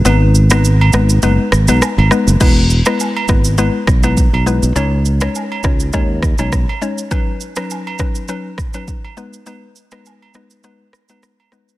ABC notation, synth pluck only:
X:1
M:4/4
L:1/16
Q:"Swing 16ths" 1/4=102
K:E
V:1 name="Synth pluck"
[G,B,DB]3 [G,B,DB] z2 [G,B,DB] z [G,B,DB] z2 [G,B,DB] z2 [G,B,DB] z | [G,B,EB] z2 [G,B,EB]3 [G,B,EB]2 [G,B,EB] z2 [G,B,EB] z2 [G,B,EB] z | [G,CDc] z2 [G,CDc]3 [G,CDc]2 [G,CDc] z2 [G,CDc] z2 [G,CDc] z | [F,CDB] z2 [F,CDB]3 [F,CDB]2 [F,CDB] z2 [F,CDB] z2 [G,B,DB] z |
[G,B,DB] z2 [G,B,DB]3 [G,B,DB]2 [G,B,DB] z2 [G,B,DB]3 [G,B,DB]2 |]